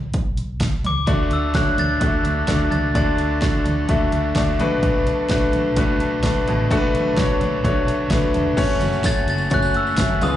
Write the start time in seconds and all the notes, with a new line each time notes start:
Already playing: B1
0.14 B1, kick, closed hi-hat
0.37 B1, closed hi-hat
0.60 B1, kick, snare, closed hi-hat
0.84 C#2 D6, closed hi-hat, floor tom
1.07 D2 D3 F#3 A3 D4 F#4 A4 D5, kick, closed hi-hat
1.30 D2 A3 D4 A4 E6, closed hi-hat
1.53 F#3 A3 D4 F#4 A4 C#5 F#6, kick, snare, closed hi-hat
1.77 D2 A3 D4 A4 A6, closed hi-hat, floor tom
2.00 D2 D3 F#3 A3 D4 F#4 A4 E5, kick, closed hi-hat
2.23 D2 A3 D4 A4, closed hi-hat
2.47 D2 F#3 A3 D4 F#4 A4 D5, kick, snare, closed hi-hat
2.71 C#2 A3 D4 A4 A6, closed hi-hat, floor tom
2.94 D2 D3 F#3 A3 D4 F#4 A4 D5 A6, kick, closed hi-hat
3.17 D2 A3 D4 A4, closed hi-hat
3.41 F#3 A3 D4 F#4 A4 D5, kick, snare, closed hi-hat
3.64 D2 A3 D4 A4, closed hi-hat, floor tom
3.88 D2 D3 F#3 A3 D4 F#4 A4 E5, kick, closed hi-hat
4.11 D2 A3 D4 A4, closed hi-hat
4.35 D2 F#3 A3 D4 F#4 A4 D5, kick, snare, closed hi-hat
4.58 B1 B2 A3 D4 F#4 A4 B4, closed hi-hat, floor tom
4.82 B2 F#3 A3 D4 A4, kick, closed hi-hat
5.06 B1 A3 D4 A4, closed hi-hat
5.29 F#3 A3 D4 F#4 A4 B4, kick, snare, closed hi-hat
5.53 B1 A3 D4 A4, closed hi-hat, floor tom
5.76 B1 B2 F#3 A3 D4 F#4 A4 B4, kick, closed hi-hat
6.00 B1 A3 D4 A4, closed hi-hat
6.23 B1 F#3 A3 D4 F#4 A4 B4, kick, snare, closed hi-hat
6.47 A1 B2 A3 D4 A4, closed hi-hat, floor tom
6.71 B1 B2 F#3 A3 D4 F#4 A4, kick, closed hi-hat
6.77 B4
6.94 B1 A3 D4 A4, closed hi-hat, floor tom
7.16 F#3 A3 D4 F#4 A4 C#5, kick, snare, closed hi-hat
7.40 B1 A3 D4 A4, closed hi-hat, floor tom
7.64 B1 B2 F#3 A3 D4 F#4 A4 C#5, kick, closed hi-hat
7.87 B1 A3 D4 A4, closed hi-hat
8.10 B1 F#3 A3 D4 F#4 A4 B4, kick, snare, closed hi-hat
8.34 E1 A3 D4 A4, closed hi-hat, floor tom
8.57 F#1 F#2 C#3 F#3 A3 C#4 F#4 C#5, kick, closed hi-hat, crash, tambourine
8.80 F#1 F#3 A3 C#4 F#4, closed hi-hat, floor tom, tambourine
8.93 tambourine
9.03 F#3 A3 C#4 F#4 C#5 A6, kick, snare, closed hi-hat, tambourine
9.27 F#1 F#3 A3 C#4 F#4 A6, closed hi-hat, tambourine
9.38 tambourine
9.50 F#1 F#2 C#3 F#3 A3 C#4 F#4 C#5 F#6, kick, closed hi-hat, tambourine
9.62 tambourine
9.74 F#1 F#3 A3 C#4 F#4 E6, closed hi-hat
9.87 tambourine
9.97 F#1 F#3 A3 C#4 F#4 E5, kick, snare, closed hi-hat, tambourine
10.09 floor tom
10.21 C#2 C#3 G#3 B3 C#4 F4 G#4 B4 D#6, closed hi-hat, floor tom, tambourine